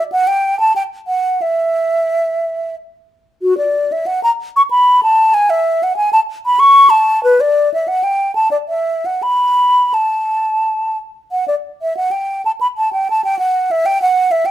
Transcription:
flute
0.12 F#5
0.27 G5
0.60 A5
0.76 G5
1.07 F#5
1.42 E5
3.42 F#4
3.58 D5
3.92 E5
4.07 F#5
4.23 A#5
4.56 C#6
4.71 B5
5.03 A5
5.34 G#5
5.50 E5
5.83 F#5
5.96 G#5
6.13 A5
6.46 B5
6.60 C#6
6.90 A5
7.24 B4
7.40 D5
7.74 E5
7.88 F#5
8.04 G5
8.35 A5
8.51 D5
8.68 E5
9.06 F#5
9.23 B5
9.94 A5
11.32 F#5
11.48 D5
11.82 E5
11.97 F#5
12.11 G5
12.45 A5
12.61 B5
12.78 A5
12.93 G5
13.10 A5
13.24 G5
13.39 F#5
13.71 E5
13.86 G5
14.02 F#5
14.31 E5
14.46 G5

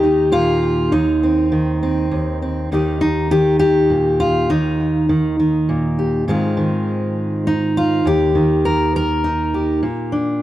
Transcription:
steel-string acoustic guitar
Already playing: D#2 D#3 G4 D#5
0.03 D#4
0.32 A#2 F4
0.92 D#2 D#4
1.23 C4
1.52 D#3
1.83 C4
2.11 D#2
2.42 C4
2.72 D#2 D#3 D#4 G4 D#5
3.01 D#4
3.31 D#3 G4
3.59 G4
3.90 A#2
4.20 F4
4.50 D#2 D#3 D#4
5.09 D#3
5.40 D#3
5.69 A#2
5.99 G4
6.28 G#2 D#3 G#3 C4 F4
6.57 D#3
7.47 D#4
7.77 F4
8.05 D#2 G4
8.35 D#3
8.65 A#4
8.96 A#4
9.24 D#4
9.54 G4
9.83 A#2
10.12 D4

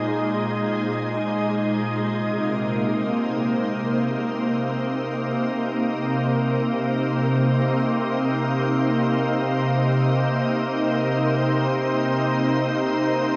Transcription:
ambient pad
Already playing: A#2 G#3 D#4 C5
2.15 C3
2.25 A#3
2.67 D#4
2.88 C5

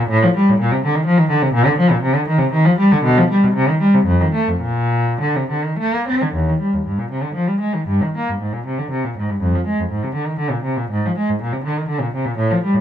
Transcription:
cello
0.09 A2
0.22 F3
0.36 G3
0.49 A2
0.59 A#2
0.72 C3
0.85 D3
0.95 D#3
1.05 F3
1.18 D#3
1.29 D3
1.42 C3
1.54 A#2
1.66 D3
1.78 F3
1.91 A#2
2.03 C3
2.15 D3
2.28 D#3
2.38 C3
2.52 D#3
2.65 F3
2.78 G3
2.91 D3
3.04 B2
3.18 F3
3.30 G3
3.44 B2
3.54 C3
3.68 D#3
3.81 G3
3.94 C3
4.05 F2
4.21 D#3
4.34 A3
4.48 F2
4.61 A#2
5.20 D3
5.36 C3
5.50 D3
5.64 D#3
5.79 A3
5.94 A#3
6.08 C4
6.22 D3
6.34 D#2
6.49 D#3
6.60 G3
6.73 D#2
6.86 G2
6.98 A#2
7.11 C3
7.22 D3
7.34 F3
7.48 G3
7.60 G#3
7.73 D#3
7.87 G2
8.03 D#3
8.17 A#3
8.29 G2
8.40 G#2
8.53 A#2
8.66 C3
8.78 D3
8.91 C3
9.04 A#2
9.17 G#2
9.30 G2
9.41 F2
9.55 F3
9.66 G#3
9.80 F2
9.90 G#2
10.03 C3
10.14 D3
10.26 D#3
10.39 D3
10.51 A#2
10.64 C3
10.77 A#2
10.90 G#2
11.05 F3
11.18 G#3
11.30 G#2
11.42 A#2
11.53 C3
11.64 D3
11.77 D#3
11.88 D3
12.01 A#2
12.14 C3
12.25 A#2
12.37 A2
12.51 F3
12.64 G3
12.74 A2

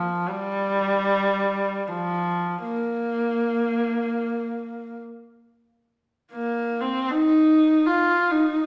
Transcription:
horsehead fiddle
Already playing: F3
0.28 G3
1.88 F3
2.62 A#3
6.32 A#3
6.81 C4
7.11 D#4
7.86 F4
8.31 D#4

